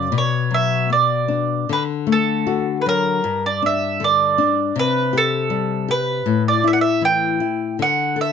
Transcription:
0.00 0.11 C#3 medium
0.00 0.16 D5 medium
0.12 1.64 B2 medium
0.18 0.92 C#5 medium
0.51 0.88 F#3 soft
0.51 0.89 E5 medium
0.90 1.28 B3 medium
0.90 1.72 D5 medium
1.28 1.67 D4 soft
1.69 3.20 D3 medium
1.69 1.83 B4 medium
2.07 2.45 A3 medium
2.12 2.77 A4 medium
2.47 2.84 F#4 soft
2.82 2.87 B4 medium
2.86 3.23 F#3 medium
2.86 3.46 A#4 medium
3.24 4.71 G2 medium
3.46 3.62 D5 medium
3.62 3.99 D4 soft
3.62 4.03 E5 medium
4.00 4.36 D3 medium
4.04 4.79 D5 medium
4.38 4.74 D4 medium
4.76 6.21 C3 medium
4.76 5.16 B4 medium
5.13 5.49 G4 medium
5.18 5.92 A4 medium
5.50 5.86 G3 medium
5.88 6.24 G4 medium
5.88 6.42 B4 medium
6.26 7.75 A2 medium
6.48 6.66 D5 medium
6.64 7.01 E4 soft
6.64 6.72 E5 medium
6.73 6.79 F#5 medium
6.81 7.04 E5 medium
7.01 7.39 E3 soft
7.01 7.76 G5 medium
7.40 7.78 E4 soft
7.79 8.32 D3 medium
7.79 8.20 F#5 medium
8.16 8.32 A4 soft
8.21 8.32 E5 medium

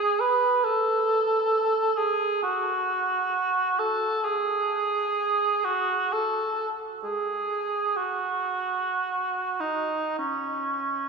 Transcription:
0.00 0.22 G#4 medium
0.20 0.66 B4 medium
0.64 1.99 A4 medium
1.98 2.42 G#4 medium
2.43 3.81 F#4 medium
3.79 4.26 A4 medium
4.24 5.66 G#4 medium
5.64 6.14 F#4 medium
6.12 6.78 A4 medium
7.03 7.98 G#4 soft
7.96 9.62 F#4 soft
9.60 10.18 D#4 soft
10.19 11.09 C#4 soft

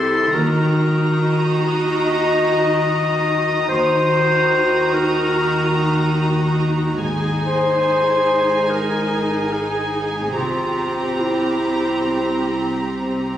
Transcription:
0.00 0.31 C2 medium
0.00 0.31 C3 medium
0.00 0.32 E4 soft
0.00 0.32 G4 soft
0.00 0.36 A4 medium
0.00 0.32 C6 soft
0.34 1.15 D#2 soft
0.34 3.67 D#2 medium
0.34 3.64 D#3 medium
0.34 3.65 D#4 soft
0.34 3.65 F#4 soft
0.34 1.74 A#4 medium
0.34 3.64 A#5 medium
0.34 6.57 A#5 soft
1.21 6.57 D#6 soft
2.03 3.65 D#5 medium
3.68 6.98 D#2 medium
3.68 4.48 D#2 soft
3.68 6.98 D#3 soft
3.68 6.99 D#4 soft
3.68 6.99 F#4 soft
3.68 4.95 C5 medium
3.68 6.99 A#5 soft
4.93 6.60 A#4 medium
7.02 7.81 G#1 soft
7.02 10.36 G#1 medium
7.02 10.32 G#2 soft
7.02 10.32 D#4 soft
7.02 10.32 G#4 soft
7.02 10.32 G#5 soft
7.44 8.72 C5 medium
8.70 9.54 A#4 soft
9.53 10.35 G#4 soft
10.35 13.38 C2 medium
10.35 11.15 C2 soft
10.35 13.38 C3 soft
10.35 13.38 C4 soft
10.35 11.21 F4 soft
10.35 13.38 G4 soft
10.35 13.38 A#5 soft
11.19 12.86 E4 soft

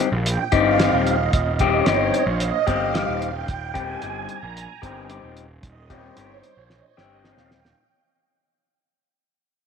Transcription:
0.12 0.36 A#1 medium
0.26 closed hi-hat medium
0.52 0.88 G1 medium
0.52 0.78 G3 medium
0.52 0.78 C4 medium
0.52 0.79 D#4 medium
0.52 0.79 G4 medium
0.52 kick medium
0.52 closed hi-hat medium
0.79 1.14 G3 medium
0.79 1.15 C4 medium
0.79 1.15 D#4 medium
0.79 1.15 G4 medium
0.79 snare loud
0.79 closed hi-hat medium
0.93 1.28 D#1 medium
1.07 closed hi-hat medium
1.33 1.80 D#1 medium
1.33 kick medium
1.33 closed hi-hat medium
1.59 1.86 G3 medium
1.59 1.86 C4 medium
1.59 1.86 D#4 medium
1.59 1.87 G4 medium
1.59 kick medium
1.59 closed hi-hat medium
1.86 2.10 G1 medium
1.86 2.22 G3 medium
1.86 2.22 C4 medium
1.86 2.22 D#4 medium
1.86 2.22 G4 medium
1.86 snare medium
1.86 closed hi-hat medium
2.14 closed hi-hat medium
2.26 2.50 A#1 medium
2.40 closed hi-hat medium
2.67 3.03 G1 medium
2.67 2.92 G3 medium
2.67 2.93 C4 medium
2.67 2.94 D#4 medium
2.67 2.94 G4 medium
2.67 kick medium
2.67 closed hi-hat medium
2.94 3.29 G3 medium
2.94 3.29 C4 medium
2.94 3.29 D#4 medium
2.94 3.29 G4 medium
2.94 snare medium
2.94 closed hi-hat medium
3.08 3.43 D#1 medium
3.22 closed hi-hat medium
3.48 3.95 D#1 medium
3.48 kick medium
3.48 closed hi-hat medium
3.74 4.01 G3 medium
3.74 4.01 C4 medium
3.74 4.01 D#4 medium
3.74 4.01 G4 medium
3.74 kick medium
3.74 closed hi-hat medium
4.02 4.26 G1 medium
4.02 4.37 G3 medium
4.02 4.37 C4 medium
4.02 4.37 D#4 medium
4.02 4.37 G4 medium
4.02 closed hi-hat medium
4.29 closed hi-hat medium
4.43 4.66 A#1 medium
4.57 closed hi-hat medium
4.82 5.18 G1 medium
4.82 5.08 G3 medium
4.82 5.09 C4 medium
4.82 5.09 D#4 medium
4.82 5.09 G4 medium
4.82 kick medium
4.82 closed hi-hat medium
5.09 5.44 G3 medium
5.09 5.44 C4 medium
5.09 5.44 D#4 medium
5.09 5.45 G4 medium
5.09 closed hi-hat medium
5.23 5.58 D#1 medium
5.37 closed hi-hat medium
5.63 6.10 D#1 medium
5.63 kick medium
5.63 closed hi-hat medium
5.90 6.15 G3 medium
5.90 6.16 C4 medium
5.90 6.17 D#4 medium
5.90 6.17 G4 medium
5.90 kick medium
5.90 closed hi-hat medium
6.16 6.41 G1 medium
6.16 6.51 G3 medium
6.16 6.52 C4 medium
6.16 6.52 D#4 medium
6.16 6.52 G4 medium
6.16 closed hi-hat medium
6.43 closed hi-hat medium
6.57 6.80 A#1 medium
6.70 snare soft
6.97 7.33 G1 medium
6.97 7.23 G3 medium
6.97 7.23 C4 medium
6.97 7.24 D#4 medium
6.97 7.24 G4 medium
6.97 snare medium
7.24 7.59 G3 medium
7.24 7.59 C4 medium
7.24 7.59 D#4 medium
7.24 7.60 G4 medium
7.24 snare medium
7.37 7.72 D#1 medium
7.37 snare medium
7.51 snare medium
7.65 snare medium

